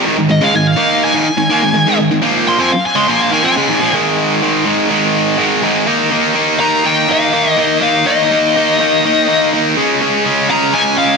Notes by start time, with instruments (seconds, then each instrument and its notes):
0.05 distorted electric guitar G#2 D#3
0.17 distorted electric guitar G#2 D#3
0.29 distorted electric guitar G#2 D#3, lead electric guitar D#5
0.41 distorted electric guitar C#3 G#3, lead electric guitar F5
0.54 distorted electric guitar G#2 D#3, lead electric guitar G#5
0.67 lead electric guitar F5
0.76 distorted electric guitar D#3 A#3 D#4
1.05 lead electric guitar G#5
1.13 distorted electric guitar G#2 D#3
1.25 muted distorted electric guitar stroke
1.37 distorted electric guitar G#2 D#3
1.50 distorted electric guitar D#3 A#3
1.62 distorted electric guitar G#2 D#3
1.74 distorted electric guitar G#2 D#3
1.86 distorted electric guitar G#2 D#3
1.98 distorted electric guitar G#2 D#3
2.11 distorted electric guitar G#2 D#3
2.21 distorted electric guitar A#2 F3 A#3
2.48 lead electric guitar C6
2.59 distorted electric guitar F3 C4, lead electric guitar G#5
2.71 lead electric guitar F5, muted distorted electric guitar stroke
2.86 lead electric guitar G#5
2.95 distorted electric guitar C#3 G#3, lead electric guitar C6
3.07 distorted electric guitar A#2 F3 A#3, lead electric guitar G#5
3.22 lead electric guitar F5
3.31 distorted electric guitar D#3 A#3, lead electric guitar G#5
3.43 distorted electric guitar F3 C4, lead electric guitar G#5
3.56 distorted electric guitar C#3 G#3
3.69 distorted electric guitar G#2 D#3
3.80 distorted electric guitar A#2 F3
3.92 distorted electric guitar G#2 D#3 G#3
4.42 distorted electric guitar G#2 D#3 G#3
4.65 distorted electric guitar G#2 D#3 G#3
4.90 distorted electric guitar G#2 D#3 G#3
5.38 distorted electric guitar G#2 D#3 G#3
5.62 distorted electric guitar G#2 D#3 G#3
5.86 distorted electric guitar D#3 A#3 D#4
6.11 distorted electric guitar D#3 A#3 D#4
6.34 distorted electric guitar D#3 A#3 D#4
6.59 distorted electric guitar D#3 A#3 D#4, lead electric guitar A#5
6.84 distorted electric guitar D#3 A#3 D#4, lead electric guitar G5
7.08 distorted electric guitar D#3 A#3 D#4, lead electric guitar F5
7.33 distorted electric guitar D#3 A#3 D#4
7.57 distorted electric guitar D#3 A#3 D#4, lead electric guitar D#5
7.81 distorted electric guitar D#3 A#3 D#4, lead electric guitar F5
8.06 distorted electric guitar D#3 A#3 D#4, lead electric guitar D#5
8.31 distorted electric guitar D#3 A#3 D#4
8.56 distorted electric guitar D#3 A#3 D#4
8.80 distorted electric guitar D#3 A#3 D#4
9.05 distorted electric guitar D#3 A#3 D#4
9.28 distorted electric guitar D#3 A#3 D#4
9.53 distorted electric guitar D#3 A#3 D#4
9.76 distorted electric guitar C#3 G#3 C#4
10.01 distorted electric guitar C#3 G#3 C#4
10.25 distorted electric guitar C#3 G#3 C#4
10.49 distorted electric guitar C#3 G#3 C#4, lead electric guitar A#5
10.74 distorted electric guitar C#3 G#3 C#4, lead electric guitar G#5
10.97 distorted electric guitar C#3 G#3 C#4, lead electric guitar F5